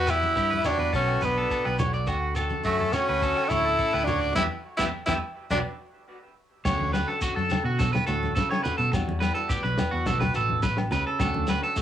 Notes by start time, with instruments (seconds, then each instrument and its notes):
Already playing: fingered electric bass E2, nylon-string guitar E2, tenor saxophone F#4, trumpet B4
0.07 nylon-string guitar B3, tenor saxophone E4, trumpet G4, clean electric guitar B4, cross-stick, closed hi-hat, low agogo, shekere
0.22 high conga, shekere
0.36 fingered electric bass G2, nylon-string guitar G3, clean electric guitar G4, kick, shekere
0.51 clean electric guitar B4, high conga
0.64 nylon-string guitar E3 F#4, tenor saxophone D4, trumpet F#4, clean electric guitar C#5, cross-stick, closed hi-hat, low conga, low agogo, shekere
0.78 fingered electric bass E2, clean electric guitar B4
0.93 fingered electric bass B1, nylon-string guitar B2 F#4, tenor saxophone C#4, trumpet F#4, clean electric guitar A4, kick, shekere
1.08 cross-stick, low agogo
1.21 fingered electric bass B1, tenor saxophone B3, trumpet D4, clean electric guitar B4, muted nylon-string guitar stroke, closed hi-hat, high conga, shekere
1.38 clean electric guitar A4
1.50 clean electric guitar A4, kick, shekere
1.65 fingered electric bass B1, clean electric guitar B4, cross-stick, low agogo
1.79 nylon-string guitar D3 F#4, clean electric guitar C#5, closed hi-hat, high conga, low conga, shekere
1.93 clean electric guitar D5, shekere
2.07 fingered electric bass D2, nylon-string guitar D3 F#4, clean electric guitar F#4, kick, cross-stick, low agogo, shekere
2.35 nylon-string guitar F#4, clean electric guitar A4, cross-stick, closed hi-hat, low agogo, shekere
2.49 high conga, shekere
2.64 fingered electric bass F#2, tenor saxophone A3, trumpet C#4, clean electric guitar F#4, kick, shekere
2.80 clean electric guitar A4, high conga
2.93 nylon-string guitar A3 F#4, tenor saxophone C#4, trumpet F#4, clean electric guitar C#5, cross-stick, closed hi-hat, low conga, low agogo, shekere
3.09 fingered electric bass D2, clean electric guitar B4
3.22 nylon-string guitar C#4, clean electric guitar A4, kick, shekere
3.36 cross-stick, low agogo
3.48 fingered electric bass D2, nylon-string guitar A2 C#4, tenor saxophone E4, trumpet A4, clean electric guitar C#5, closed hi-hat, high conga, shekere
3.65 clean electric guitar A4
3.78 nylon-string guitar C#4, clean electric guitar A4, kick, shekere
3.93 fingered electric bass D2, clean electric guitar B4, cross-stick, low agogo
4.04 tenor saxophone D4, trumpet F#4, closed hi-hat, high conga, low conga, shekere
4.08 nylon-string guitar F#4, clean electric guitar C#5
4.22 clean electric guitar D5, shekere
4.35 fingered electric bass E2, nylon-string guitar G3 B3 E4, tenor saxophone E4, clean electric guitar G4 B4 E5, trumpet G4, kick, snare, high conga, low agogo, shekere
4.77 fingered electric bass E2, nylon-string guitar G3 B3 E4, tenor saxophone E4, clean electric guitar G4 B4 E5, trumpet G4, kick, snare, high conga, low agogo, shekere
5.06 fingered electric bass E2, nylon-string guitar G3 B3 E4, tenor saxophone E4, clean electric guitar G4 B4 E5, trumpet G4, kick, snare, high conga, low agogo, shekere
5.50 fingered electric bass B1, nylon-string guitar F#3 B3 D4, tenor saxophone D4, clean electric guitar F#4 B4 D5, trumpet F#4, kick, snare, high conga, low agogo, shekere
6.65 fingered electric bass D2, nylon-string guitar D3 C#4 F#4, clean electric guitar C#5, kick, snare, crash, low agogo, shekere
6.79 fingered electric bass D2, high conga
6.93 nylon-string guitar F#4, clean electric guitar B4, snare, low agogo, shekere
7.08 clean electric guitar A4, snare
7.21 clean electric guitar F#4, nylon-string guitar F#4, kick, shekere
7.36 fingered electric bass F#2, clean electric guitar A4, snare
7.50 snare, low conga, low agogo, shekere
7.64 fingered electric bass B2, clean electric guitar F#4
7.79 nylon-string guitar F#4, clean electric guitar A4, kick, snare, high conga, shekere
7.93 clean electric guitar B4, snare, low conga, low agogo
8.07 fingered electric bass D2, nylon-string guitar A2 F#4, clean electric guitar A4, shekere
8.23 snare, high conga
8.35 nylon-string guitar C#3, clean electric guitar A4, kick, snare, shekere
8.51 clean electric guitar C#5, snare, low agogo
8.63 nylon-string guitar D3, clean electric guitar B4, low conga, shekere
8.78 fingered electric bass B2, clean electric guitar A4, snare
8.92 fingered electric bass E2, nylon-string guitar E2 G3 F#4, muted clean electric guitar stroke, muted nylon-string guitar stroke, kick, snare, low agogo, shekere
9.07 fingered electric bass E2, high conga
9.20 nylon-string guitar E4, clean electric guitar B4, snare, low agogo, shekere
9.34 nylon-string guitar F#4, clean electric guitar A4, snare
9.49 nylon-string guitar E3 B3, clean electric guitar G4, kick, shekere
9.63 fingered electric bass B1, clean electric guitar B4, snare
9.78 snare, low conga, low agogo, shekere
9.91 fingered electric bass E2, clean electric guitar F#4
10.05 fingered electric bass B1, nylon-string guitar B2 D4 F#4, clean electric guitar A4, muted nylon-string guitar stroke, kick, snare, high conga, shekere
10.20 clean electric guitar B4, snare, low conga, low agogo
10.34 fingered electric bass A1, nylon-string guitar F#4, clean electric guitar A4, shekere
10.49 high conga
10.62 nylon-string guitar B2, clean electric guitar B4, kick, snare, shekere
10.77 snare, low agogo
10.91 fingered electric bass C#2, nylon-string guitar C#3, clean electric guitar B4, low conga, shekere
11.07 clean electric guitar A4
11.20 fingered electric bass D2, nylon-string guitar D3 C#4 F#4, clean electric guitar A4, kick, snare, low agogo, shekere
11.34 fingered electric bass D2, high conga
11.47 nylon-string guitar F#4, clean electric guitar B4, snare, low agogo, shekere
11.62 clean electric guitar A4, snare
11.76 nylon-string guitar A3 F#4, muted clean electric guitar stroke, kick, shekere